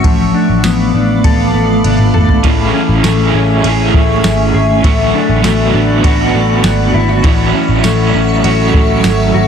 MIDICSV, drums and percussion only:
0, 0, Header, 1, 2, 480
1, 0, Start_track
1, 0, Tempo, 600000
1, 33, Time_signature, 4, 2, 24, 8
1, 7581, End_track
2, 0, Start_track
2, 0, Title_t, "Drums"
2, 33, Note_on_c, 9, 36, 123
2, 34, Note_on_c, 9, 51, 66
2, 113, Note_off_c, 9, 36, 0
2, 114, Note_off_c, 9, 51, 0
2, 510, Note_on_c, 9, 38, 101
2, 510, Note_on_c, 9, 51, 63
2, 510, Note_on_c, 9, 54, 70
2, 590, Note_off_c, 9, 38, 0
2, 590, Note_off_c, 9, 51, 0
2, 590, Note_off_c, 9, 54, 0
2, 992, Note_on_c, 9, 36, 89
2, 994, Note_on_c, 9, 51, 70
2, 1072, Note_off_c, 9, 36, 0
2, 1074, Note_off_c, 9, 51, 0
2, 1470, Note_on_c, 9, 48, 52
2, 1475, Note_on_c, 9, 51, 66
2, 1550, Note_off_c, 9, 48, 0
2, 1555, Note_off_c, 9, 51, 0
2, 1590, Note_on_c, 9, 47, 70
2, 1670, Note_off_c, 9, 47, 0
2, 1712, Note_on_c, 9, 45, 89
2, 1792, Note_off_c, 9, 45, 0
2, 1831, Note_on_c, 9, 43, 95
2, 1911, Note_off_c, 9, 43, 0
2, 1950, Note_on_c, 9, 51, 64
2, 1952, Note_on_c, 9, 36, 116
2, 2030, Note_off_c, 9, 51, 0
2, 2032, Note_off_c, 9, 36, 0
2, 2432, Note_on_c, 9, 38, 117
2, 2432, Note_on_c, 9, 51, 60
2, 2433, Note_on_c, 9, 54, 62
2, 2512, Note_off_c, 9, 38, 0
2, 2512, Note_off_c, 9, 51, 0
2, 2513, Note_off_c, 9, 54, 0
2, 2914, Note_on_c, 9, 51, 64
2, 2994, Note_off_c, 9, 51, 0
2, 3153, Note_on_c, 9, 36, 97
2, 3233, Note_off_c, 9, 36, 0
2, 3393, Note_on_c, 9, 54, 66
2, 3394, Note_on_c, 9, 38, 98
2, 3398, Note_on_c, 9, 51, 64
2, 3473, Note_off_c, 9, 54, 0
2, 3474, Note_off_c, 9, 38, 0
2, 3478, Note_off_c, 9, 51, 0
2, 3873, Note_on_c, 9, 36, 119
2, 3874, Note_on_c, 9, 51, 72
2, 3953, Note_off_c, 9, 36, 0
2, 3954, Note_off_c, 9, 51, 0
2, 4353, Note_on_c, 9, 38, 117
2, 4353, Note_on_c, 9, 51, 66
2, 4353, Note_on_c, 9, 54, 64
2, 4433, Note_off_c, 9, 38, 0
2, 4433, Note_off_c, 9, 51, 0
2, 4433, Note_off_c, 9, 54, 0
2, 4832, Note_on_c, 9, 36, 87
2, 4833, Note_on_c, 9, 51, 66
2, 4912, Note_off_c, 9, 36, 0
2, 4913, Note_off_c, 9, 51, 0
2, 5311, Note_on_c, 9, 54, 63
2, 5312, Note_on_c, 9, 38, 109
2, 5316, Note_on_c, 9, 51, 62
2, 5391, Note_off_c, 9, 54, 0
2, 5392, Note_off_c, 9, 38, 0
2, 5396, Note_off_c, 9, 51, 0
2, 5791, Note_on_c, 9, 51, 61
2, 5792, Note_on_c, 9, 36, 124
2, 5871, Note_off_c, 9, 51, 0
2, 5872, Note_off_c, 9, 36, 0
2, 6271, Note_on_c, 9, 38, 112
2, 6271, Note_on_c, 9, 51, 59
2, 6272, Note_on_c, 9, 54, 67
2, 6351, Note_off_c, 9, 38, 0
2, 6351, Note_off_c, 9, 51, 0
2, 6352, Note_off_c, 9, 54, 0
2, 6754, Note_on_c, 9, 51, 60
2, 6834, Note_off_c, 9, 51, 0
2, 6992, Note_on_c, 9, 36, 102
2, 7072, Note_off_c, 9, 36, 0
2, 7232, Note_on_c, 9, 54, 64
2, 7233, Note_on_c, 9, 38, 112
2, 7237, Note_on_c, 9, 51, 63
2, 7312, Note_off_c, 9, 54, 0
2, 7313, Note_off_c, 9, 38, 0
2, 7317, Note_off_c, 9, 51, 0
2, 7581, End_track
0, 0, End_of_file